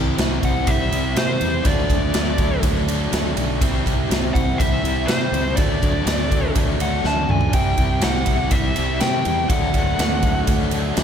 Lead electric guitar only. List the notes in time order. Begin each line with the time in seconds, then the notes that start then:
0.45 F#5
0.68 E5
1.17 C5
1.66 D5
4.34 F#5
4.58 E5
5.07 C5
5.56 D5
6.82 F#5
7.07 A5
7.31 G#5
7.54 G5
8.04 F#5
8.52 E5
9.00 G5
9.49 F#5